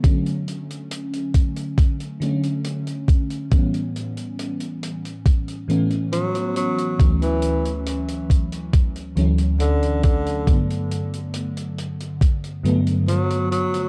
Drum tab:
HH |xxxxxxxxxxxxxxxx|xxxxxxxxxxxxxxxx|xxxxxxxxxxxxxxxx|xxxxxxxxxxxxxxxx|
BD |o-----o-o-----o-|o-------o-------|o-----o-o-----o-|o-------o-------|